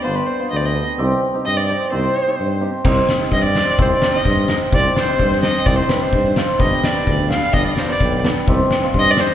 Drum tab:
CC |--------|--------|--------|x-------|
SD |--------|--------|--------|--o---o-|
BD |--------|--------|--------|o---o---|

CC |--------|--------|--------|--------|
SD |--o---o-|--o--ooo|o-o---o-|--o---o-|
BD |o---o---|o---o---|o---o---|o---o---|

CC |--------|--------|
SD |o-o---oo|--o--oo-|
BD |o---o---|o---o---|